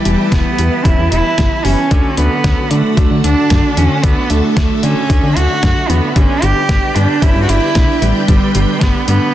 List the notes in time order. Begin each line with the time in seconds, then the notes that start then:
Already playing: G3 E4 G4 B4 A5
0.05 E1 E3 G3 B3 E4, closed hi-hat
0.32 E1 E3 G3 B3 E4, kick, snare, closed hi-hat
0.58 E2 E3 G3 B3 E4, closed hi-hat
0.85 E1 E3 G3 B3 C#4 E4, kick, closed hi-hat
0.98 E2
1.11 E1 E3 G3 B3 E4, closed hi-hat
1.38 G1 E3 G3 B3 E4, kick, snare, closed hi-hat
1.64 F#1 E3 G3 B3 C#4 E4, open hi-hat
1.91 D2 D3 F#3 A3 D4 F#4 A4 F#5, kick, closed hi-hat
2.17 D2 D3 F#3 A3 B3 D4, closed hi-hat
2.44 D2 D3 F#3 A3 C#4, kick, snare, closed hi-hat
2.71 D3 F#3 A3 D4, closed hi-hat
2.97 D2 D3 F#3 A3 D4, kick, closed hi-hat
3.11 D3
3.24 D2 D3 F#3 A3 D4, closed hi-hat
3.50 F#2 D3 F#3 A3 D4, kick, snare, closed hi-hat
3.77 E2 D3 F#3 A3 C#4 D4, closed hi-hat
4.03 D2 D3 F#3 A3 B3 D4 E5, kick, closed hi-hat
4.30 D2 D3 F#3 A3 D4, closed hi-hat
4.56 D2 D3 F#3 A3 D4, kick, snare, closed hi-hat
4.83 D3 F#3 A3 C#4 D4, closed hi-hat
5.10 D2 D3 F#3 A3 D4, kick, closed hi-hat
5.23 D3
5.36 D2 D3 F#3 A3 D4 F#4, closed hi-hat
5.63 F#2 D3 F#3 A3 D4, kick, snare, closed hi-hat
5.89 E2 D3 F#3 A3 B3 D4, closed hi-hat
6.16 G1 D3 G3 B3 C#4 D4 G4 B4 G5, kick, closed hi-hat
6.42 G1 D3 G3 B3 D4 G4, closed hi-hat
6.69 G1 D3 G3 B3 D4, kick, snare, closed hi-hat
6.95 G2 D3 G3 B3 D4, closed hi-hat
7.22 G1 D3 G3 B3 C#4 E4, kick, closed hi-hat
7.36 G2
7.42 F#4
7.48 G1 D3 G3 B3 D4 E4, closed hi-hat
7.75 B1 D3 G3 B3 D4, kick, snare, closed hi-hat
8.01 A1 D3 G3 B3 E4, closed hi-hat
8.28 G1 D3 G3 B3 D4, kick, closed hi-hat
8.55 G1 D3 G3 B3 D4, closed hi-hat
8.81 G1 D3 G3 B3 D4, kick, snare, closed hi-hat
9.08 G2 D3 G3 B3 D4, closed hi-hat